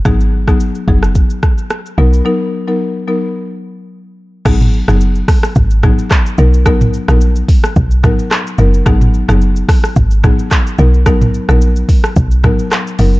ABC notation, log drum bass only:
X:1
M:4/4
L:1/16
Q:"Swing 16ths" 1/4=109
K:G#m
V:1 name="Log drum bass" clef=bass
G,,,4- G,,, z F,,,3 z4 z B,,,2 | z16 | G,,,3 F,,,3 z2 G,,,3 z3 B,,,2- | B,,,3 A,,,3 z2 B,,,3 z3 F,,,2 |
G,,,3 F,,,3 z2 G,,,3 z3 B,,,2- | B,,,3 A,,,3 z2 B,,,3 z3 F,,,2 |]